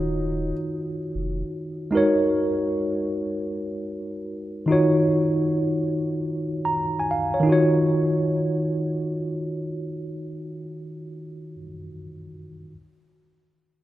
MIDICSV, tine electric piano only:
0, 0, Header, 1, 2, 480
1, 0, Start_track
1, 0, Key_signature, -6, "minor"
1, 0, Tempo, 500000
1, 13284, End_track
2, 0, Start_track
2, 0, Title_t, "Tine electric piano"
2, 0, Program_c, 0, 4
2, 0, Control_c, 0, 64, 127
2, 0, Note_on_c, 0, 51, 64
2, 0, Note_on_c, 0, 63, 58
2, 0, Note_on_c, 0, 65, 59
2, 0, Note_on_c, 0, 66, 55
2, 0, Note_on_c, 0, 73, 67
2, 1809, Note_off_c, 0, 51, 0
2, 1817, Note_off_c, 0, 63, 0
2, 1825, Note_off_c, 0, 65, 0
2, 1831, Note_off_c, 0, 66, 0
2, 1832, Note_on_c, 0, 56, 72
2, 1839, Note_off_c, 0, 73, 0
2, 1845, Note_on_c, 0, 63, 71
2, 1859, Note_on_c, 0, 66, 66
2, 1874, Note_on_c, 0, 70, 73
2, 1878, Control_c, 0, 64, 0
2, 1892, Note_on_c, 0, 73, 90
2, 2060, Control_c, 0, 64, 127
2, 4458, Note_off_c, 0, 56, 0
2, 4465, Note_off_c, 0, 63, 0
2, 4472, Note_off_c, 0, 66, 0
2, 4474, Note_on_c, 0, 51, 74
2, 4479, Note_off_c, 0, 70, 0
2, 4488, Note_off_c, 0, 73, 0
2, 4490, Note_on_c, 0, 63, 70
2, 4505, Note_on_c, 0, 65, 67
2, 4521, Note_on_c, 0, 66, 68
2, 4527, Control_c, 0, 64, 0
2, 4532, Note_on_c, 0, 73, 82
2, 4687, Control_c, 0, 64, 127
2, 6145, Note_off_c, 0, 73, 0
2, 6385, Note_on_c, 0, 82, 70
2, 6700, Note_off_c, 0, 82, 0
2, 6716, Note_on_c, 0, 80, 65
2, 6824, Note_off_c, 0, 80, 0
2, 6826, Note_on_c, 0, 77, 67
2, 7035, Note_off_c, 0, 77, 0
2, 7047, Note_on_c, 0, 73, 68
2, 7093, Note_off_c, 0, 51, 0
2, 7105, Note_on_c, 0, 51, 84
2, 7111, Note_off_c, 0, 63, 0
2, 7119, Note_off_c, 0, 65, 0
2, 7127, Note_off_c, 0, 66, 0
2, 7134, Note_on_c, 0, 63, 73
2, 7164, Note_on_c, 0, 65, 74
2, 7172, Control_c, 0, 64, 0
2, 7193, Note_on_c, 0, 66, 70
2, 7213, Note_off_c, 0, 73, 0
2, 7225, Note_on_c, 0, 73, 83
2, 7315, Control_c, 0, 64, 127
2, 11085, Note_off_c, 0, 51, 0
2, 11114, Note_off_c, 0, 63, 0
2, 11144, Note_off_c, 0, 65, 0
2, 11173, Note_off_c, 0, 66, 0
2, 11205, Note_off_c, 0, 73, 0
2, 12222, Control_c, 0, 64, 0
2, 13284, End_track
0, 0, End_of_file